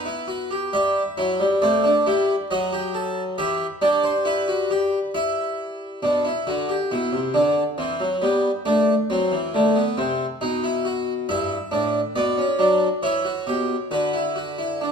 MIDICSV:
0, 0, Header, 1, 2, 480
1, 0, Start_track
1, 0, Tempo, 882353
1, 398, Time_signature, 3, 2, 24, 8
1, 4232, Tempo, 874636
1, 7112, Tempo, 894188
1, 8128, End_track
2, 0, Start_track
2, 0, Title_t, "Harpsichord"
2, 0, Program_c, 0, 6
2, 0, Note_on_c, 0, 59, 74
2, 0, Note_on_c, 0, 71, 64
2, 30, Note_on_c, 0, 64, 58
2, 150, Note_off_c, 0, 64, 0
2, 150, Note_on_c, 0, 66, 70
2, 271, Note_off_c, 0, 66, 0
2, 276, Note_on_c, 0, 67, 61
2, 382, Note_off_c, 0, 59, 0
2, 383, Note_off_c, 0, 71, 0
2, 392, Note_off_c, 0, 67, 0
2, 398, Note_on_c, 0, 55, 78
2, 399, Note_on_c, 0, 67, 70
2, 399, Note_on_c, 0, 76, 75
2, 547, Note_off_c, 0, 55, 0
2, 548, Note_off_c, 0, 67, 0
2, 639, Note_on_c, 0, 54, 81
2, 640, Note_on_c, 0, 64, 89
2, 756, Note_off_c, 0, 54, 0
2, 761, Note_on_c, 0, 55, 75
2, 788, Note_off_c, 0, 64, 0
2, 865, Note_off_c, 0, 76, 0
2, 876, Note_off_c, 0, 55, 0
2, 880, Note_on_c, 0, 57, 66
2, 880, Note_on_c, 0, 60, 83
2, 881, Note_on_c, 0, 74, 69
2, 995, Note_off_c, 0, 60, 0
2, 1000, Note_on_c, 0, 62, 78
2, 1028, Note_off_c, 0, 57, 0
2, 1115, Note_off_c, 0, 62, 0
2, 1123, Note_on_c, 0, 55, 82
2, 1123, Note_on_c, 0, 64, 93
2, 1270, Note_off_c, 0, 55, 0
2, 1270, Note_off_c, 0, 64, 0
2, 1344, Note_off_c, 0, 74, 0
2, 1363, Note_on_c, 0, 54, 75
2, 1364, Note_on_c, 0, 66, 95
2, 1365, Note_on_c, 0, 75, 78
2, 1477, Note_off_c, 0, 66, 0
2, 1483, Note_on_c, 0, 67, 86
2, 1596, Note_off_c, 0, 67, 0
2, 1602, Note_on_c, 0, 69, 92
2, 1747, Note_off_c, 0, 69, 0
2, 1823, Note_off_c, 0, 54, 0
2, 1823, Note_off_c, 0, 75, 0
2, 1839, Note_on_c, 0, 52, 84
2, 1840, Note_on_c, 0, 67, 104
2, 1840, Note_on_c, 0, 76, 78
2, 1985, Note_off_c, 0, 52, 0
2, 1985, Note_off_c, 0, 67, 0
2, 1985, Note_off_c, 0, 76, 0
2, 2075, Note_on_c, 0, 55, 86
2, 2076, Note_on_c, 0, 62, 100
2, 2078, Note_on_c, 0, 74, 83
2, 2190, Note_off_c, 0, 74, 0
2, 2195, Note_on_c, 0, 72, 82
2, 2223, Note_off_c, 0, 62, 0
2, 2309, Note_off_c, 0, 72, 0
2, 2312, Note_on_c, 0, 64, 88
2, 2314, Note_on_c, 0, 71, 74
2, 2428, Note_off_c, 0, 64, 0
2, 2437, Note_on_c, 0, 66, 91
2, 2550, Note_off_c, 0, 66, 0
2, 2560, Note_on_c, 0, 67, 102
2, 2706, Note_off_c, 0, 67, 0
2, 2779, Note_off_c, 0, 71, 0
2, 2799, Note_on_c, 0, 64, 89
2, 2799, Note_on_c, 0, 76, 80
2, 3253, Note_off_c, 0, 55, 0
2, 3262, Note_off_c, 0, 64, 0
2, 3263, Note_off_c, 0, 76, 0
2, 3278, Note_on_c, 0, 47, 77
2, 3278, Note_on_c, 0, 62, 68
2, 3393, Note_off_c, 0, 62, 0
2, 3398, Note_on_c, 0, 64, 61
2, 3426, Note_off_c, 0, 47, 0
2, 3513, Note_off_c, 0, 64, 0
2, 3520, Note_on_c, 0, 50, 75
2, 3520, Note_on_c, 0, 66, 69
2, 3634, Note_off_c, 0, 66, 0
2, 3639, Note_on_c, 0, 67, 63
2, 3668, Note_off_c, 0, 50, 0
2, 3754, Note_off_c, 0, 67, 0
2, 3762, Note_on_c, 0, 47, 66
2, 3762, Note_on_c, 0, 64, 62
2, 3875, Note_off_c, 0, 47, 0
2, 3877, Note_on_c, 0, 48, 64
2, 3909, Note_off_c, 0, 64, 0
2, 3992, Note_off_c, 0, 48, 0
2, 3993, Note_on_c, 0, 62, 67
2, 3994, Note_on_c, 0, 50, 81
2, 4142, Note_off_c, 0, 50, 0
2, 4142, Note_off_c, 0, 62, 0
2, 4233, Note_on_c, 0, 52, 78
2, 4233, Note_on_c, 0, 60, 69
2, 4351, Note_off_c, 0, 52, 0
2, 4354, Note_on_c, 0, 54, 72
2, 4383, Note_off_c, 0, 60, 0
2, 4471, Note_off_c, 0, 54, 0
2, 4472, Note_on_c, 0, 59, 66
2, 4473, Note_on_c, 0, 55, 76
2, 4623, Note_off_c, 0, 55, 0
2, 4623, Note_off_c, 0, 59, 0
2, 4713, Note_on_c, 0, 57, 81
2, 4713, Note_on_c, 0, 62, 88
2, 4863, Note_off_c, 0, 57, 0
2, 4863, Note_off_c, 0, 62, 0
2, 4957, Note_on_c, 0, 60, 85
2, 4958, Note_on_c, 0, 54, 80
2, 5074, Note_off_c, 0, 54, 0
2, 5075, Note_on_c, 0, 52, 79
2, 5106, Note_off_c, 0, 60, 0
2, 5193, Note_off_c, 0, 52, 0
2, 5200, Note_on_c, 0, 50, 73
2, 5201, Note_on_c, 0, 57, 81
2, 5315, Note_off_c, 0, 57, 0
2, 5317, Note_on_c, 0, 59, 78
2, 5347, Note_off_c, 0, 50, 0
2, 5433, Note_off_c, 0, 59, 0
2, 5437, Note_on_c, 0, 48, 87
2, 5437, Note_on_c, 0, 60, 91
2, 5585, Note_off_c, 0, 60, 0
2, 5586, Note_off_c, 0, 48, 0
2, 5677, Note_on_c, 0, 63, 91
2, 5678, Note_on_c, 0, 47, 84
2, 5793, Note_off_c, 0, 63, 0
2, 5800, Note_on_c, 0, 64, 84
2, 5914, Note_off_c, 0, 64, 0
2, 5917, Note_on_c, 0, 66, 91
2, 6065, Note_off_c, 0, 66, 0
2, 6141, Note_off_c, 0, 47, 0
2, 6158, Note_on_c, 0, 64, 91
2, 6159, Note_on_c, 0, 76, 85
2, 6160, Note_on_c, 0, 43, 84
2, 6305, Note_off_c, 0, 64, 0
2, 6307, Note_off_c, 0, 43, 0
2, 6391, Note_on_c, 0, 62, 84
2, 6393, Note_on_c, 0, 45, 81
2, 6541, Note_off_c, 0, 62, 0
2, 6542, Note_off_c, 0, 45, 0
2, 6621, Note_off_c, 0, 76, 0
2, 6634, Note_on_c, 0, 47, 66
2, 6634, Note_on_c, 0, 59, 74
2, 6634, Note_on_c, 0, 74, 64
2, 6750, Note_off_c, 0, 59, 0
2, 6755, Note_on_c, 0, 61, 77
2, 6783, Note_off_c, 0, 47, 0
2, 6871, Note_off_c, 0, 61, 0
2, 6871, Note_on_c, 0, 54, 75
2, 6872, Note_on_c, 0, 62, 87
2, 7022, Note_off_c, 0, 54, 0
2, 7023, Note_off_c, 0, 62, 0
2, 7102, Note_off_c, 0, 74, 0
2, 7111, Note_on_c, 0, 52, 70
2, 7113, Note_on_c, 0, 73, 67
2, 7114, Note_on_c, 0, 64, 82
2, 7230, Note_off_c, 0, 64, 0
2, 7230, Note_on_c, 0, 66, 72
2, 7260, Note_off_c, 0, 52, 0
2, 7347, Note_off_c, 0, 66, 0
2, 7349, Note_on_c, 0, 47, 62
2, 7350, Note_on_c, 0, 67, 75
2, 7498, Note_off_c, 0, 47, 0
2, 7499, Note_off_c, 0, 67, 0
2, 7576, Note_off_c, 0, 73, 0
2, 7587, Note_on_c, 0, 50, 66
2, 7587, Note_on_c, 0, 66, 63
2, 7588, Note_on_c, 0, 71, 61
2, 7706, Note_off_c, 0, 66, 0
2, 7706, Note_on_c, 0, 64, 58
2, 7826, Note_off_c, 0, 64, 0
2, 7826, Note_on_c, 0, 66, 61
2, 7947, Note_off_c, 0, 66, 0
2, 7948, Note_on_c, 0, 64, 58
2, 8068, Note_off_c, 0, 64, 0
2, 8070, Note_on_c, 0, 62, 51
2, 8128, Note_off_c, 0, 50, 0
2, 8128, Note_off_c, 0, 62, 0
2, 8128, Note_off_c, 0, 71, 0
2, 8128, End_track
0, 0, End_of_file